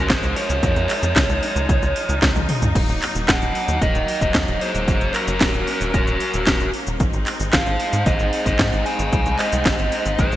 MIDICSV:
0, 0, Header, 1, 5, 480
1, 0, Start_track
1, 0, Tempo, 530973
1, 570, Time_signature, 4, 2, 24, 8
1, 9366, End_track
2, 0, Start_track
2, 0, Title_t, "Lead electric guitar"
2, 0, Program_c, 0, 29
2, 0, Note_on_c, 0, 70, 89
2, 91, Note_off_c, 0, 70, 0
2, 94, Note_on_c, 0, 72, 95
2, 100, Note_on_c, 0, 68, 76
2, 319, Note_off_c, 0, 68, 0
2, 331, Note_on_c, 0, 73, 90
2, 334, Note_off_c, 0, 72, 0
2, 338, Note_on_c, 0, 70, 73
2, 1975, Note_off_c, 0, 73, 0
2, 1978, Note_off_c, 0, 70, 0
2, 2972, Note_on_c, 0, 78, 109
2, 2978, Note_on_c, 0, 75, 85
2, 3421, Note_off_c, 0, 75, 0
2, 3453, Note_on_c, 0, 75, 102
2, 3460, Note_on_c, 0, 70, 80
2, 3466, Note_off_c, 0, 78, 0
2, 3790, Note_off_c, 0, 70, 0
2, 3801, Note_off_c, 0, 75, 0
2, 3812, Note_on_c, 0, 75, 105
2, 3818, Note_on_c, 0, 72, 81
2, 4146, Note_off_c, 0, 75, 0
2, 4149, Note_off_c, 0, 72, 0
2, 4171, Note_on_c, 0, 72, 98
2, 4178, Note_on_c, 0, 68, 76
2, 4621, Note_off_c, 0, 68, 0
2, 4647, Note_off_c, 0, 72, 0
2, 4651, Note_on_c, 0, 70, 94
2, 4658, Note_on_c, 0, 66, 75
2, 5338, Note_off_c, 0, 66, 0
2, 5362, Note_off_c, 0, 70, 0
2, 5373, Note_on_c, 0, 70, 79
2, 5379, Note_on_c, 0, 66, 62
2, 6055, Note_off_c, 0, 70, 0
2, 6058, Note_off_c, 0, 66, 0
2, 6813, Note_on_c, 0, 77, 95
2, 6820, Note_on_c, 0, 72, 76
2, 7262, Note_off_c, 0, 72, 0
2, 7285, Note_off_c, 0, 77, 0
2, 7289, Note_on_c, 0, 75, 100
2, 7297, Note_on_c, 0, 72, 75
2, 7629, Note_off_c, 0, 72, 0
2, 7636, Note_off_c, 0, 75, 0
2, 7647, Note_on_c, 0, 75, 102
2, 7657, Note_on_c, 0, 72, 80
2, 7989, Note_off_c, 0, 72, 0
2, 8008, Note_on_c, 0, 80, 114
2, 8015, Note_off_c, 0, 75, 0
2, 8018, Note_on_c, 0, 77, 89
2, 8461, Note_off_c, 0, 77, 0
2, 8485, Note_on_c, 0, 75, 103
2, 8497, Note_on_c, 0, 72, 80
2, 8503, Note_off_c, 0, 80, 0
2, 9177, Note_off_c, 0, 72, 0
2, 9213, Note_on_c, 0, 72, 82
2, 9220, Note_on_c, 0, 68, 62
2, 9229, Note_off_c, 0, 75, 0
2, 9366, Note_off_c, 0, 68, 0
2, 9366, Note_off_c, 0, 72, 0
2, 9366, End_track
3, 0, Start_track
3, 0, Title_t, "String section"
3, 0, Program_c, 1, 48
3, 0, Note_on_c, 1, 53, 81
3, 0, Note_on_c, 1, 56, 76
3, 0, Note_on_c, 1, 61, 93
3, 534, Note_off_c, 1, 61, 0
3, 572, Note_on_c, 1, 63, 92
3, 2452, Note_off_c, 1, 56, 0
3, 2453, Note_off_c, 1, 53, 0
3, 2491, Note_on_c, 1, 54, 82
3, 2491, Note_on_c, 1, 58, 77
3, 4375, Note_off_c, 1, 63, 0
3, 4412, Note_on_c, 1, 61, 92
3, 6294, Note_off_c, 1, 54, 0
3, 6295, Note_off_c, 1, 58, 0
3, 6312, Note_off_c, 1, 61, 0
3, 6331, Note_on_c, 1, 63, 93
3, 6332, Note_on_c, 1, 56, 84
3, 6332, Note_on_c, 1, 60, 75
3, 9366, Note_off_c, 1, 56, 0
3, 9366, Note_off_c, 1, 60, 0
3, 9366, Note_off_c, 1, 63, 0
3, 9366, End_track
4, 0, Start_track
4, 0, Title_t, "Analog synth bass"
4, 0, Program_c, 2, 38
4, 89, Note_on_c, 2, 32, 106
4, 197, Note_off_c, 2, 32, 0
4, 210, Note_on_c, 2, 37, 78
4, 317, Note_off_c, 2, 37, 0
4, 449, Note_on_c, 2, 37, 83
4, 557, Note_off_c, 2, 37, 0
4, 569, Note_on_c, 2, 41, 103
4, 677, Note_off_c, 2, 41, 0
4, 688, Note_on_c, 2, 41, 78
4, 796, Note_off_c, 2, 41, 0
4, 929, Note_on_c, 2, 41, 81
4, 1037, Note_off_c, 2, 41, 0
4, 1048, Note_on_c, 2, 37, 104
4, 1156, Note_off_c, 2, 37, 0
4, 1169, Note_on_c, 2, 37, 76
4, 1277, Note_off_c, 2, 37, 0
4, 1409, Note_on_c, 2, 37, 84
4, 1517, Note_off_c, 2, 37, 0
4, 1528, Note_on_c, 2, 37, 101
4, 1636, Note_off_c, 2, 37, 0
4, 1649, Note_on_c, 2, 37, 77
4, 1756, Note_off_c, 2, 37, 0
4, 1890, Note_on_c, 2, 37, 84
4, 1997, Note_off_c, 2, 37, 0
4, 2008, Note_on_c, 2, 37, 108
4, 2116, Note_off_c, 2, 37, 0
4, 2128, Note_on_c, 2, 37, 78
4, 2236, Note_off_c, 2, 37, 0
4, 2370, Note_on_c, 2, 37, 83
4, 2477, Note_off_c, 2, 37, 0
4, 2489, Note_on_c, 2, 27, 103
4, 2597, Note_off_c, 2, 27, 0
4, 2609, Note_on_c, 2, 27, 80
4, 2717, Note_off_c, 2, 27, 0
4, 2850, Note_on_c, 2, 27, 80
4, 2957, Note_off_c, 2, 27, 0
4, 2970, Note_on_c, 2, 27, 101
4, 3077, Note_off_c, 2, 27, 0
4, 3091, Note_on_c, 2, 27, 77
4, 3198, Note_off_c, 2, 27, 0
4, 3329, Note_on_c, 2, 39, 83
4, 3437, Note_off_c, 2, 39, 0
4, 3449, Note_on_c, 2, 27, 100
4, 3557, Note_off_c, 2, 27, 0
4, 3570, Note_on_c, 2, 27, 79
4, 3677, Note_off_c, 2, 27, 0
4, 3809, Note_on_c, 2, 27, 85
4, 3917, Note_off_c, 2, 27, 0
4, 3929, Note_on_c, 2, 39, 102
4, 4036, Note_off_c, 2, 39, 0
4, 4049, Note_on_c, 2, 27, 77
4, 4157, Note_off_c, 2, 27, 0
4, 4291, Note_on_c, 2, 27, 83
4, 4398, Note_off_c, 2, 27, 0
4, 4409, Note_on_c, 2, 30, 101
4, 4517, Note_off_c, 2, 30, 0
4, 4531, Note_on_c, 2, 30, 77
4, 4638, Note_off_c, 2, 30, 0
4, 4769, Note_on_c, 2, 30, 84
4, 4877, Note_off_c, 2, 30, 0
4, 4889, Note_on_c, 2, 27, 106
4, 4997, Note_off_c, 2, 27, 0
4, 5011, Note_on_c, 2, 27, 78
4, 5117, Note_off_c, 2, 27, 0
4, 5250, Note_on_c, 2, 27, 82
4, 5357, Note_off_c, 2, 27, 0
4, 5370, Note_on_c, 2, 27, 103
4, 5477, Note_off_c, 2, 27, 0
4, 5491, Note_on_c, 2, 27, 76
4, 5597, Note_off_c, 2, 27, 0
4, 5733, Note_on_c, 2, 27, 82
4, 5838, Note_off_c, 2, 27, 0
4, 5849, Note_on_c, 2, 27, 104
4, 5957, Note_off_c, 2, 27, 0
4, 5972, Note_on_c, 2, 27, 78
4, 6078, Note_off_c, 2, 27, 0
4, 6213, Note_on_c, 2, 27, 85
4, 6319, Note_off_c, 2, 27, 0
4, 6329, Note_on_c, 2, 32, 102
4, 6436, Note_off_c, 2, 32, 0
4, 6451, Note_on_c, 2, 32, 78
4, 6558, Note_off_c, 2, 32, 0
4, 6691, Note_on_c, 2, 32, 81
4, 6797, Note_off_c, 2, 32, 0
4, 6808, Note_on_c, 2, 32, 105
4, 6916, Note_off_c, 2, 32, 0
4, 6930, Note_on_c, 2, 32, 76
4, 7037, Note_off_c, 2, 32, 0
4, 7170, Note_on_c, 2, 44, 84
4, 7277, Note_off_c, 2, 44, 0
4, 7289, Note_on_c, 2, 32, 103
4, 7397, Note_off_c, 2, 32, 0
4, 7412, Note_on_c, 2, 32, 78
4, 7518, Note_off_c, 2, 32, 0
4, 7648, Note_on_c, 2, 32, 85
4, 7756, Note_off_c, 2, 32, 0
4, 7768, Note_on_c, 2, 44, 106
4, 7876, Note_off_c, 2, 44, 0
4, 7892, Note_on_c, 2, 32, 78
4, 7998, Note_off_c, 2, 32, 0
4, 8130, Note_on_c, 2, 32, 82
4, 8237, Note_off_c, 2, 32, 0
4, 8250, Note_on_c, 2, 36, 103
4, 8357, Note_off_c, 2, 36, 0
4, 8372, Note_on_c, 2, 36, 79
4, 8478, Note_off_c, 2, 36, 0
4, 8612, Note_on_c, 2, 36, 80
4, 8718, Note_off_c, 2, 36, 0
4, 8729, Note_on_c, 2, 32, 107
4, 8837, Note_off_c, 2, 32, 0
4, 8853, Note_on_c, 2, 32, 79
4, 8959, Note_off_c, 2, 32, 0
4, 9092, Note_on_c, 2, 32, 84
4, 9198, Note_off_c, 2, 32, 0
4, 9209, Note_on_c, 2, 32, 98
4, 9317, Note_off_c, 2, 32, 0
4, 9331, Note_on_c, 2, 32, 79
4, 9366, Note_off_c, 2, 32, 0
4, 9366, End_track
5, 0, Start_track
5, 0, Title_t, "Drums"
5, 89, Note_on_c, 9, 36, 116
5, 90, Note_on_c, 9, 38, 116
5, 90, Note_on_c, 9, 39, 90
5, 90, Note_on_c, 9, 42, 100
5, 90, Note_on_c, 9, 69, 52
5, 179, Note_off_c, 9, 36, 0
5, 181, Note_off_c, 9, 38, 0
5, 181, Note_off_c, 9, 39, 0
5, 181, Note_off_c, 9, 42, 0
5, 181, Note_off_c, 9, 69, 0
5, 209, Note_on_c, 9, 42, 42
5, 209, Note_on_c, 9, 69, 31
5, 300, Note_off_c, 9, 42, 0
5, 300, Note_off_c, 9, 69, 0
5, 329, Note_on_c, 9, 46, 114
5, 419, Note_off_c, 9, 46, 0
5, 450, Note_on_c, 9, 42, 41
5, 450, Note_on_c, 9, 69, 59
5, 540, Note_off_c, 9, 42, 0
5, 540, Note_off_c, 9, 69, 0
5, 569, Note_on_c, 9, 36, 116
5, 570, Note_on_c, 9, 42, 98
5, 570, Note_on_c, 9, 69, 51
5, 659, Note_off_c, 9, 36, 0
5, 660, Note_off_c, 9, 42, 0
5, 660, Note_off_c, 9, 69, 0
5, 690, Note_on_c, 9, 42, 42
5, 690, Note_on_c, 9, 69, 29
5, 780, Note_off_c, 9, 42, 0
5, 780, Note_off_c, 9, 69, 0
5, 811, Note_on_c, 9, 39, 54
5, 811, Note_on_c, 9, 46, 109
5, 901, Note_off_c, 9, 39, 0
5, 901, Note_off_c, 9, 46, 0
5, 930, Note_on_c, 9, 42, 42
5, 930, Note_on_c, 9, 69, 59
5, 1021, Note_off_c, 9, 42, 0
5, 1021, Note_off_c, 9, 69, 0
5, 1048, Note_on_c, 9, 36, 118
5, 1051, Note_on_c, 9, 38, 116
5, 1051, Note_on_c, 9, 39, 91
5, 1051, Note_on_c, 9, 42, 95
5, 1051, Note_on_c, 9, 69, 49
5, 1139, Note_off_c, 9, 36, 0
5, 1142, Note_off_c, 9, 38, 0
5, 1142, Note_off_c, 9, 39, 0
5, 1142, Note_off_c, 9, 42, 0
5, 1142, Note_off_c, 9, 69, 0
5, 1171, Note_on_c, 9, 42, 42
5, 1171, Note_on_c, 9, 69, 30
5, 1262, Note_off_c, 9, 42, 0
5, 1262, Note_off_c, 9, 69, 0
5, 1290, Note_on_c, 9, 46, 109
5, 1380, Note_off_c, 9, 46, 0
5, 1412, Note_on_c, 9, 42, 42
5, 1412, Note_on_c, 9, 69, 57
5, 1502, Note_off_c, 9, 42, 0
5, 1502, Note_off_c, 9, 69, 0
5, 1528, Note_on_c, 9, 36, 117
5, 1532, Note_on_c, 9, 42, 94
5, 1532, Note_on_c, 9, 69, 48
5, 1619, Note_off_c, 9, 36, 0
5, 1623, Note_off_c, 9, 42, 0
5, 1623, Note_off_c, 9, 69, 0
5, 1651, Note_on_c, 9, 42, 43
5, 1651, Note_on_c, 9, 69, 30
5, 1741, Note_off_c, 9, 42, 0
5, 1741, Note_off_c, 9, 69, 0
5, 1770, Note_on_c, 9, 46, 110
5, 1861, Note_off_c, 9, 46, 0
5, 1892, Note_on_c, 9, 42, 43
5, 1892, Note_on_c, 9, 69, 58
5, 1983, Note_off_c, 9, 42, 0
5, 1983, Note_off_c, 9, 69, 0
5, 2008, Note_on_c, 9, 36, 118
5, 2011, Note_on_c, 9, 38, 120
5, 2011, Note_on_c, 9, 39, 93
5, 2011, Note_on_c, 9, 42, 98
5, 2011, Note_on_c, 9, 69, 50
5, 2099, Note_off_c, 9, 36, 0
5, 2102, Note_off_c, 9, 38, 0
5, 2102, Note_off_c, 9, 39, 0
5, 2102, Note_off_c, 9, 42, 0
5, 2102, Note_off_c, 9, 69, 0
5, 2131, Note_on_c, 9, 42, 42
5, 2131, Note_on_c, 9, 48, 54
5, 2131, Note_on_c, 9, 69, 30
5, 2221, Note_off_c, 9, 42, 0
5, 2221, Note_off_c, 9, 48, 0
5, 2221, Note_off_c, 9, 69, 0
5, 2250, Note_on_c, 9, 46, 112
5, 2250, Note_on_c, 9, 47, 79
5, 2340, Note_off_c, 9, 46, 0
5, 2340, Note_off_c, 9, 47, 0
5, 2370, Note_on_c, 9, 42, 42
5, 2370, Note_on_c, 9, 45, 81
5, 2370, Note_on_c, 9, 69, 57
5, 2461, Note_off_c, 9, 42, 0
5, 2461, Note_off_c, 9, 45, 0
5, 2461, Note_off_c, 9, 69, 0
5, 2488, Note_on_c, 9, 36, 121
5, 2492, Note_on_c, 9, 42, 99
5, 2492, Note_on_c, 9, 49, 79
5, 2492, Note_on_c, 9, 69, 49
5, 2579, Note_off_c, 9, 36, 0
5, 2582, Note_off_c, 9, 42, 0
5, 2582, Note_off_c, 9, 49, 0
5, 2582, Note_off_c, 9, 69, 0
5, 2612, Note_on_c, 9, 42, 40
5, 2612, Note_on_c, 9, 69, 28
5, 2703, Note_off_c, 9, 42, 0
5, 2703, Note_off_c, 9, 69, 0
5, 2732, Note_on_c, 9, 39, 56
5, 2732, Note_on_c, 9, 46, 105
5, 2822, Note_off_c, 9, 39, 0
5, 2822, Note_off_c, 9, 46, 0
5, 2852, Note_on_c, 9, 42, 41
5, 2852, Note_on_c, 9, 69, 58
5, 2942, Note_off_c, 9, 42, 0
5, 2942, Note_off_c, 9, 69, 0
5, 2969, Note_on_c, 9, 36, 124
5, 2971, Note_on_c, 9, 38, 120
5, 2971, Note_on_c, 9, 39, 95
5, 2971, Note_on_c, 9, 42, 97
5, 2971, Note_on_c, 9, 69, 46
5, 3059, Note_off_c, 9, 36, 0
5, 3062, Note_off_c, 9, 38, 0
5, 3062, Note_off_c, 9, 39, 0
5, 3062, Note_off_c, 9, 42, 0
5, 3062, Note_off_c, 9, 69, 0
5, 3092, Note_on_c, 9, 42, 43
5, 3092, Note_on_c, 9, 69, 29
5, 3182, Note_off_c, 9, 42, 0
5, 3182, Note_off_c, 9, 69, 0
5, 3211, Note_on_c, 9, 46, 105
5, 3301, Note_off_c, 9, 46, 0
5, 3331, Note_on_c, 9, 42, 42
5, 3331, Note_on_c, 9, 69, 59
5, 3421, Note_off_c, 9, 42, 0
5, 3421, Note_off_c, 9, 69, 0
5, 3449, Note_on_c, 9, 36, 121
5, 3451, Note_on_c, 9, 42, 98
5, 3451, Note_on_c, 9, 69, 46
5, 3539, Note_off_c, 9, 36, 0
5, 3542, Note_off_c, 9, 42, 0
5, 3542, Note_off_c, 9, 69, 0
5, 3571, Note_on_c, 9, 42, 41
5, 3571, Note_on_c, 9, 69, 30
5, 3661, Note_off_c, 9, 42, 0
5, 3661, Note_off_c, 9, 69, 0
5, 3691, Note_on_c, 9, 46, 103
5, 3781, Note_off_c, 9, 46, 0
5, 3809, Note_on_c, 9, 36, 62
5, 3811, Note_on_c, 9, 42, 40
5, 3811, Note_on_c, 9, 69, 58
5, 3899, Note_off_c, 9, 36, 0
5, 3901, Note_off_c, 9, 42, 0
5, 3901, Note_off_c, 9, 69, 0
5, 3929, Note_on_c, 9, 36, 122
5, 3930, Note_on_c, 9, 38, 124
5, 3930, Note_on_c, 9, 39, 95
5, 3930, Note_on_c, 9, 42, 98
5, 3930, Note_on_c, 9, 69, 48
5, 4019, Note_off_c, 9, 36, 0
5, 4020, Note_off_c, 9, 38, 0
5, 4020, Note_off_c, 9, 39, 0
5, 4020, Note_off_c, 9, 42, 0
5, 4020, Note_off_c, 9, 69, 0
5, 4052, Note_on_c, 9, 42, 42
5, 4052, Note_on_c, 9, 69, 28
5, 4142, Note_off_c, 9, 42, 0
5, 4142, Note_off_c, 9, 69, 0
5, 4171, Note_on_c, 9, 46, 106
5, 4261, Note_off_c, 9, 46, 0
5, 4292, Note_on_c, 9, 42, 41
5, 4292, Note_on_c, 9, 69, 58
5, 4382, Note_off_c, 9, 42, 0
5, 4382, Note_off_c, 9, 69, 0
5, 4409, Note_on_c, 9, 36, 125
5, 4411, Note_on_c, 9, 42, 99
5, 4411, Note_on_c, 9, 69, 48
5, 4500, Note_off_c, 9, 36, 0
5, 4502, Note_off_c, 9, 42, 0
5, 4502, Note_off_c, 9, 69, 0
5, 4531, Note_on_c, 9, 42, 41
5, 4531, Note_on_c, 9, 69, 28
5, 4621, Note_off_c, 9, 42, 0
5, 4621, Note_off_c, 9, 69, 0
5, 4650, Note_on_c, 9, 39, 55
5, 4650, Note_on_c, 9, 46, 103
5, 4741, Note_off_c, 9, 39, 0
5, 4741, Note_off_c, 9, 46, 0
5, 4770, Note_on_c, 9, 42, 41
5, 4770, Note_on_c, 9, 69, 58
5, 4861, Note_off_c, 9, 42, 0
5, 4861, Note_off_c, 9, 69, 0
5, 4889, Note_on_c, 9, 36, 123
5, 4889, Note_on_c, 9, 38, 124
5, 4889, Note_on_c, 9, 39, 96
5, 4889, Note_on_c, 9, 42, 95
5, 4889, Note_on_c, 9, 69, 47
5, 4980, Note_off_c, 9, 36, 0
5, 4980, Note_off_c, 9, 38, 0
5, 4980, Note_off_c, 9, 39, 0
5, 4980, Note_off_c, 9, 42, 0
5, 4980, Note_off_c, 9, 69, 0
5, 5010, Note_on_c, 9, 42, 40
5, 5010, Note_on_c, 9, 69, 29
5, 5100, Note_off_c, 9, 42, 0
5, 5100, Note_off_c, 9, 69, 0
5, 5129, Note_on_c, 9, 46, 102
5, 5219, Note_off_c, 9, 46, 0
5, 5250, Note_on_c, 9, 42, 41
5, 5250, Note_on_c, 9, 69, 59
5, 5340, Note_off_c, 9, 42, 0
5, 5340, Note_off_c, 9, 69, 0
5, 5369, Note_on_c, 9, 36, 122
5, 5371, Note_on_c, 9, 42, 89
5, 5371, Note_on_c, 9, 69, 46
5, 5459, Note_off_c, 9, 36, 0
5, 5461, Note_off_c, 9, 42, 0
5, 5461, Note_off_c, 9, 69, 0
5, 5490, Note_on_c, 9, 42, 42
5, 5490, Note_on_c, 9, 69, 30
5, 5581, Note_off_c, 9, 42, 0
5, 5581, Note_off_c, 9, 69, 0
5, 5609, Note_on_c, 9, 46, 106
5, 5699, Note_off_c, 9, 46, 0
5, 5729, Note_on_c, 9, 42, 40
5, 5729, Note_on_c, 9, 69, 57
5, 5820, Note_off_c, 9, 42, 0
5, 5820, Note_off_c, 9, 69, 0
5, 5849, Note_on_c, 9, 36, 126
5, 5849, Note_on_c, 9, 38, 127
5, 5849, Note_on_c, 9, 39, 96
5, 5849, Note_on_c, 9, 42, 100
5, 5849, Note_on_c, 9, 69, 48
5, 5939, Note_off_c, 9, 36, 0
5, 5939, Note_off_c, 9, 38, 0
5, 5939, Note_off_c, 9, 39, 0
5, 5939, Note_off_c, 9, 42, 0
5, 5939, Note_off_c, 9, 69, 0
5, 5968, Note_on_c, 9, 42, 42
5, 5968, Note_on_c, 9, 69, 29
5, 6059, Note_off_c, 9, 42, 0
5, 6059, Note_off_c, 9, 69, 0
5, 6089, Note_on_c, 9, 46, 104
5, 6179, Note_off_c, 9, 46, 0
5, 6208, Note_on_c, 9, 42, 41
5, 6208, Note_on_c, 9, 69, 56
5, 6299, Note_off_c, 9, 42, 0
5, 6299, Note_off_c, 9, 69, 0
5, 6328, Note_on_c, 9, 36, 125
5, 6329, Note_on_c, 9, 42, 92
5, 6329, Note_on_c, 9, 69, 50
5, 6419, Note_off_c, 9, 36, 0
5, 6420, Note_off_c, 9, 42, 0
5, 6420, Note_off_c, 9, 69, 0
5, 6449, Note_on_c, 9, 42, 39
5, 6449, Note_on_c, 9, 69, 29
5, 6540, Note_off_c, 9, 42, 0
5, 6540, Note_off_c, 9, 69, 0
5, 6568, Note_on_c, 9, 39, 55
5, 6568, Note_on_c, 9, 46, 102
5, 6659, Note_off_c, 9, 39, 0
5, 6659, Note_off_c, 9, 46, 0
5, 6688, Note_on_c, 9, 42, 40
5, 6688, Note_on_c, 9, 69, 58
5, 6779, Note_off_c, 9, 42, 0
5, 6779, Note_off_c, 9, 69, 0
5, 6808, Note_on_c, 9, 36, 125
5, 6808, Note_on_c, 9, 38, 124
5, 6808, Note_on_c, 9, 39, 93
5, 6808, Note_on_c, 9, 42, 94
5, 6808, Note_on_c, 9, 69, 49
5, 6898, Note_off_c, 9, 38, 0
5, 6898, Note_off_c, 9, 39, 0
5, 6898, Note_off_c, 9, 42, 0
5, 6898, Note_off_c, 9, 69, 0
5, 6899, Note_off_c, 9, 36, 0
5, 6928, Note_on_c, 9, 42, 40
5, 6928, Note_on_c, 9, 69, 30
5, 7019, Note_off_c, 9, 42, 0
5, 7019, Note_off_c, 9, 69, 0
5, 7048, Note_on_c, 9, 46, 99
5, 7138, Note_off_c, 9, 46, 0
5, 7168, Note_on_c, 9, 42, 39
5, 7168, Note_on_c, 9, 69, 59
5, 7259, Note_off_c, 9, 42, 0
5, 7259, Note_off_c, 9, 69, 0
5, 7288, Note_on_c, 9, 36, 126
5, 7288, Note_on_c, 9, 42, 91
5, 7288, Note_on_c, 9, 69, 47
5, 7379, Note_off_c, 9, 36, 0
5, 7379, Note_off_c, 9, 42, 0
5, 7379, Note_off_c, 9, 69, 0
5, 7409, Note_on_c, 9, 42, 40
5, 7409, Note_on_c, 9, 69, 29
5, 7499, Note_off_c, 9, 42, 0
5, 7499, Note_off_c, 9, 69, 0
5, 7528, Note_on_c, 9, 46, 102
5, 7619, Note_off_c, 9, 46, 0
5, 7648, Note_on_c, 9, 36, 65
5, 7649, Note_on_c, 9, 42, 38
5, 7649, Note_on_c, 9, 69, 57
5, 7739, Note_off_c, 9, 36, 0
5, 7739, Note_off_c, 9, 42, 0
5, 7739, Note_off_c, 9, 69, 0
5, 7768, Note_on_c, 9, 36, 127
5, 7768, Note_on_c, 9, 38, 127
5, 7768, Note_on_c, 9, 39, 93
5, 7768, Note_on_c, 9, 42, 92
5, 7768, Note_on_c, 9, 69, 50
5, 7859, Note_off_c, 9, 36, 0
5, 7859, Note_off_c, 9, 38, 0
5, 7859, Note_off_c, 9, 39, 0
5, 7859, Note_off_c, 9, 42, 0
5, 7859, Note_off_c, 9, 69, 0
5, 7889, Note_on_c, 9, 42, 40
5, 7889, Note_on_c, 9, 69, 30
5, 7979, Note_off_c, 9, 42, 0
5, 7979, Note_off_c, 9, 69, 0
5, 8009, Note_on_c, 9, 46, 100
5, 8100, Note_off_c, 9, 46, 0
5, 8130, Note_on_c, 9, 42, 38
5, 8130, Note_on_c, 9, 69, 59
5, 8220, Note_off_c, 9, 42, 0
5, 8220, Note_off_c, 9, 69, 0
5, 8249, Note_on_c, 9, 36, 124
5, 8251, Note_on_c, 9, 42, 91
5, 8251, Note_on_c, 9, 69, 52
5, 8339, Note_off_c, 9, 36, 0
5, 8341, Note_off_c, 9, 42, 0
5, 8341, Note_off_c, 9, 69, 0
5, 8370, Note_on_c, 9, 42, 38
5, 8370, Note_on_c, 9, 69, 30
5, 8460, Note_off_c, 9, 42, 0
5, 8460, Note_off_c, 9, 69, 0
5, 8489, Note_on_c, 9, 39, 52
5, 8489, Note_on_c, 9, 46, 105
5, 8580, Note_off_c, 9, 39, 0
5, 8580, Note_off_c, 9, 46, 0
5, 8610, Note_on_c, 9, 42, 38
5, 8610, Note_on_c, 9, 69, 61
5, 8700, Note_off_c, 9, 42, 0
5, 8700, Note_off_c, 9, 69, 0
5, 8729, Note_on_c, 9, 36, 126
5, 8729, Note_on_c, 9, 38, 124
5, 8729, Note_on_c, 9, 39, 89
5, 8729, Note_on_c, 9, 42, 90
5, 8729, Note_on_c, 9, 69, 50
5, 8819, Note_off_c, 9, 38, 0
5, 8819, Note_off_c, 9, 39, 0
5, 8819, Note_off_c, 9, 42, 0
5, 8819, Note_off_c, 9, 69, 0
5, 8820, Note_off_c, 9, 36, 0
5, 8849, Note_on_c, 9, 42, 38
5, 8849, Note_on_c, 9, 69, 31
5, 8940, Note_off_c, 9, 42, 0
5, 8940, Note_off_c, 9, 69, 0
5, 8968, Note_on_c, 9, 46, 104
5, 9058, Note_off_c, 9, 46, 0
5, 9089, Note_on_c, 9, 42, 38
5, 9089, Note_on_c, 9, 69, 61
5, 9180, Note_off_c, 9, 42, 0
5, 9180, Note_off_c, 9, 69, 0
5, 9209, Note_on_c, 9, 36, 125
5, 9209, Note_on_c, 9, 42, 86
5, 9209, Note_on_c, 9, 69, 50
5, 9299, Note_off_c, 9, 42, 0
5, 9299, Note_off_c, 9, 69, 0
5, 9300, Note_off_c, 9, 36, 0
5, 9329, Note_on_c, 9, 42, 39
5, 9329, Note_on_c, 9, 69, 30
5, 9366, Note_off_c, 9, 42, 0
5, 9366, Note_off_c, 9, 69, 0
5, 9366, End_track
0, 0, End_of_file